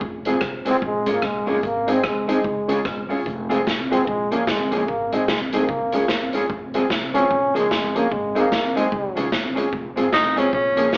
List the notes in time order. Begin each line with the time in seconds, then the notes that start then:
0.01 F1, kick
0.25 G#3 C4 F4 G#4, closed hi-hat
0.41 C2, kick, cross-stick
0.65 G#3 C4 F4 G#4, closed hi-hat
0.71 C4
0.82 A#1 G#3 C#4 G#4, kick
1.06 G#1 G#3 A#3 C#4 F4 G#4, closed hi-hat
1.12 A#3
1.22 A#1 G#3, kick, cross-stick
1.46 G#1 G#3 A#3 C#4 F4 G#4, open hi-hat
1.51 G#3
1.63 G#1 A#3, kick, hi-hat pedal
1.87 G#3 C4 D#4 G#4, closed hi-hat
1.93 C4
2.04 D#2 G#3, kick, cross-stick
2.27 G#3 C4 D#4 G#4, closed hi-hat
2.44 C#2 F4 G#4, kick
2.68 G#3 C#4 F4 G#4, closed hi-hat
2.85 G1, kick, cross-stick
3.09 G#3 C#4 F4 G#4, open hi-hat
3.26 F1, kick, hi-hat pedal
3.49 G#3 C4 F4 G#4, closed hi-hat
3.67 C2, kick, snare
3.91 G#3 C4 F4 G#4, closed hi-hat
4.07 A#1 G#3 C#4 G#4, kick
4.31 G#1 F3 A#3 C#4 G#4, closed hi-hat
4.47 G1 G#3, kick, snare
4.71 F3 G#3 A#3 C#4 G#4, closed hi-hat
4.88 G#1 A#3, kick
5.12 G#3 C4 D#4 G#4, closed hi-hat
5.28 C2 G#3, kick, snare
5.53 G#3 A#3 C4 D#4 G#4, closed hi-hat
5.69 C#2 F4 G#4, kick
5.92 F2 G#3 C#4 F4 G#4, closed hi-hat
6.08 G1, kick, snare
6.33 G#3 C#4 F4 G#4, closed hi-hat
6.50 F1, kick
6.74 G#3 C4 F4 G#4, closed hi-hat
6.90 C2, kick, snare
7.14 G#3 C4 C#4 F4 G#4, closed hi-hat
7.31 A#1 C#4 G#4, kick
7.54 C#2 F3 G#3 A#3 C#4 G#4, closed hi-hat
7.71 F2, kick, snare
7.94 F3 A#3 C#4 G#4, closed hi-hat
8.11 G#1 G#3, kick
8.35 G#3 A#3 C4 D#4 G#4, closed hi-hat
8.52 D#2, kick, snare
8.75 G#3 C4 D#4 G#4, closed hi-hat
8.92 C#2 F4 G#4, kick
9.15 C2 G#3 C#4 F4 G#4, closed hi-hat
9.32 G1, kick, snare
9.55 G#3 C#4 F4 G#4, closed hi-hat
9.73 F1, kick
9.96 G#1 G#3 C4 F4 G#4, closed hi-hat
10.13 F1 D#4, kick, snare
10.35 G#3 C4 C#4 F4 G#4, closed hi-hat
10.53 A#1 C#4 G#4, kick
10.76 F3 A#3 C#4 G#4, closed hi-hat
10.93 G1, kick, snare